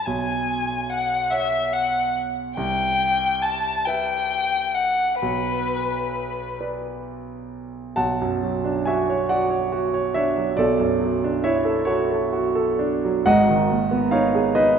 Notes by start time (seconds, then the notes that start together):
0.05 B1 G#5
0.90 F#5
1.31 C#5 E5 F#5
1.73 F#5
2.56 C2 G5
3.42 A5
3.85 B4 E5 G5
4.75 F#5
5.19 B1 B4
6.61 B4 D5
7.96 B1 F#5 A5
8.21 F#2
8.43 F#3
8.64 D4
8.85 F#4 E5 G#5
9.09 C#5
9.29 F#4 D5 F#5
9.50 C#5
9.72 F#4
9.94 C#5
10.14 D4 C#5 E5
10.37 F#3
10.57 B1 A4 D5
10.80 F#2
11.00 F#3
11.24 D4
11.44 E4 C#5 E5
11.65 A4
11.85 F#4 A4 C#5
12.10 A4
12.33 F#4
12.55 A4
12.79 D4
13.05 F#3
13.26 G#1 G#2 D#5 F#5
13.49 D#3
13.71 A#3
13.91 B3
14.11 D#4 C#5 F5
14.35 G#4
14.55 D#4 B4 D#5